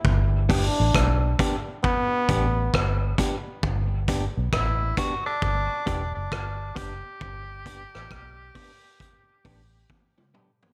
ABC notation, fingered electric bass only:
X:1
M:4/4
L:1/16
Q:"Swing 16ths" 1/4=67
K:G
V:1 name="Fingered electric bass" clef=bass
G,,,3 A,,, B,,,2 z4 A,,,2 G,,,2 z2 | G,,,3 B,,, A,,,2 z2 G,,, z E,,, F,,, G,,,2 F,,, z | G,,,3 A,,, B,,,2 z4 A,,,2 z4 |]